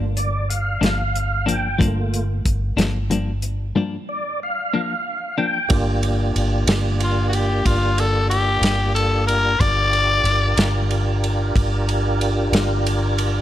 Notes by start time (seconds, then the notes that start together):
Already playing: G1
0.17 D5, closed hi-hat
0.50 F5, closed hi-hat
0.81 G1 F3 A#3 D4 F5, snare, closed hi-hat
1.16 closed hi-hat
1.46 F3 A#3 D4 G5, closed hi-hat
1.79 G1 G2 F3 A3 A#3 D4 F4, kick, closed hi-hat
2.14 closed hi-hat
2.45 G1, kick, closed hi-hat
2.76 G1 F3 A#3 D4, snare, closed hi-hat
3.10 G2 F3 A#3 D4, closed hi-hat
3.42 closed hi-hat
3.76 G2 F3 A#3 D4
4.09 D5
4.43 F5
4.74 F3 A#3 D4 F5
5.38 F3 A#3 D4 G5
5.69 G1 A#3 D4 F4 G4, kick, ride
6.03 ride
6.36 G1, ride
6.67 G1, snare, ride
7.00 F4, ride
7.29 F#4, ride
7.34 G4
7.65 G1 F4, kick, ride
7.98 A4, ride
8.30 G4, ride
8.61 G1, snare, ride
8.95 A4, ride
9.27 A#4, ride
9.60 G1 D4 F4 G4 A#4 D5, kick, ride
9.93 ride
10.24 G1, ride
10.57 G1, snare, ride
10.91 ride
11.24 ride
11.55 G1, kick, ride
11.89 ride
12.21 ride
12.52 G1, snare, ride
12.86 ride
13.18 ride